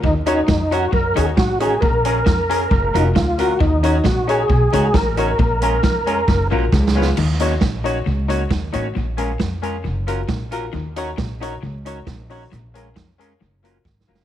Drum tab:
CC |------------------------|------------------------|------------------------|------------------------|
HH |---x-----x-----x-----x--|---x-----x-----x-----x--|---x-----x-----x-----x--|---x-----x--------------|
SD |------o-----------o-----|------o-----------o-----|------o-----------o-----|------o-----o-----o-o-o-|
BD |o-----o-----o-----o-----|o-----o-----o-----o-----|o-----o-----o-----o-----|o-----o-----o-----o-----|

CC |x-----------------------|------------------------|------------------------|------------------------|
HH |---x-----x-----x-----x--|---x-----x-----x-----x--|---x-----x-----x-----o--|p--x-----x-----x--------|
SD |------o-----------o-----|------o-----------o-----|------o-----------o-----|------o-----------o-o-o-|
BD |------o-----------o-----|------o-----------o-----|------o-----------o-----|------o-----------o-----|